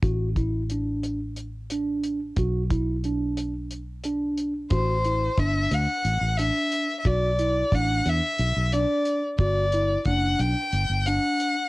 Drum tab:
HH |xxxxxxx|xxxxxxx|xxxxxxx|xxxxxxx|
BD |oo-----|oo-----|o-o----|o-o----|

HH |xxxxxxx|
BD |o-o----|